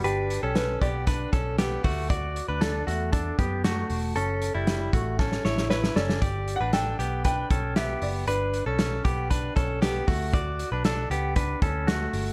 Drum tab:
HH |x-x-x-x-x-x-x-o-|x-x-x-x-x-x-x-o-|x-x-x-x---------|x-x-x-x-x-x-x-o-|
SD |----o-------o---|----o-------o---|----o---oooooooo|----o-------o---|
BD |------o-o-o---o-|o-------o-o-----|------o-o-------|o-------o-o-----|

HH |x-x-x-x-x-x-x-o-|x-x-x-x-x-x-x-o-|
SD |----o-------o---|----o-------o---|
BD |------o-o-o---o-|o-------o-o-----|